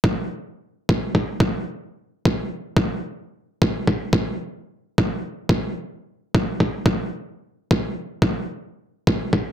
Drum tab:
BD |o---------o--o--|o---------o-----|o---------o--o--|o---------o-----|

BD |o---------o--o--|o---------o-----|o---------o--o--|